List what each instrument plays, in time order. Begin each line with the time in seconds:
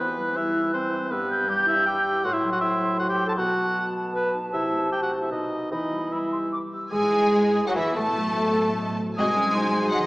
Already playing: harp B3 B4
0.00 harp E2, bassoon E3, clarinet B3, cor anglais B4, flute F#6
0.18 harp G3
0.36 clarinet E4, harp G4, cor anglais E5
0.55 harp E4
0.73 clarinet C4, harp G4, cor anglais C5
0.93 harp E4
1.10 harp G2, bassoon G2, clarinet B3, cor anglais B4, flute E6
1.30 harp G3, flute G6
1.47 clarinet G3, cor anglais G4, harp B4
1.66 clarinet E4, harp G4, cor anglais E5
1.86 clarinet G4, harp B4, cor anglais G5, flute E6
2.05 harp E4
2.24 harp A2, bassoon A2, clarinet F#4, cor anglais F#5, flute C6
2.33 clarinet E4, cor anglais E5
2.43 harp F#3
2.52 clarinet F#4, cor anglais F#5
2.61 clarinet E4, harp C5, cor anglais E5
2.81 harp F#4
2.99 clarinet F#4, harp C5, cor anglais F#5
3.09 clarinet G4, cor anglais G5
3.19 harp F#4
3.27 clarinet A4, cor anglais A5
3.37 bassoon B2, harp B2, clarinet F#4, cor anglais F#5, flute A5
3.56 harp A3
3.75 harp B4
3.94 harp A4
4.13 harp B4, clarinet B4, cor anglais B4
4.34 harp D#4
4.52 bassoon C3, harp C3, clarinet E4, cor anglais E5
4.73 harp A3
4.91 clarinet G4, cor anglais G5
5.01 clarinet F#4, cor anglais F#5
5.11 harp A4
5.21 clarinet E4, cor anglais E5
5.30 harp B2, bassoon B2, clarinet D#4, cor anglais D#5
5.52 harp B4
5.71 harp E3, bassoon E3, clarinet D#4, cor anglais D#5, flute B5
5.92 harp G3
6.11 clarinet E4, harp B4, cor anglais E5, flute B5
6.32 harp G4, flute C6
6.52 harp B4, flute D6
6.72 harp G4, flute E6
6.90 double bass section G#2, harp E3, bassoon G#3, cello section G#3, french horn section G#3, viola section G#3, cor anglais G#4, clarinet G#4, violin section G#4 G#5, flute G#5
7.02 harp E4
7.48 harp B5
7.58 harp G#5
7.66 double bass section F#2, french horn section F#3, viola section F#3, cello section F#3, bassoon F#3, clarinet F#4, cor anglais F#4, violin section F#4 F#5, harp B4, flute F#5
7.76 double bass section E2, french horn section E3, bassoon E3, viola section E3, cello section E3, clarinet E4, violin section E4 E5, cor anglais E4, harp G#4, flute E5
7.87 harp B3
7.95 double bass section A2, french horn section A3, bassoon A3, viola section A3, cello section A3, harp E4, violin section A4 A5, clarinet A4, cor anglais A4, flute A5
8.07 harp B2
8.16 harp F#3
8.26 harp F#4
8.35 harp C5
8.43 harp D#5
8.52 harp F#5
8.62 harp C6
8.71 harp F#5
8.81 harp D#5
8.90 harp C5
9.00 harp F#4
9.09 harp F#3
9.17 double bass section C2, harp C3, french horn section G#3 F#4, cello section G#3, bassoon G#3, viola section G#3 F#4, clarinet C4, violin section G#4 D#5 G#5, cor anglais G#4, flute D#6
9.27 harp C4
9.35 clarinet C#4, harp F#4
9.54 clarinet D#4, cor anglais C5, harp D#5, flute C6
9.64 harp F#5
9.72 cor anglais C5, harp G#5
9.82 harp F#5
9.91 cello section F#3, cor anglais D#5, harp D#5, violin section F#5
10.01 cello section D#3, harp G#4, violin section D#5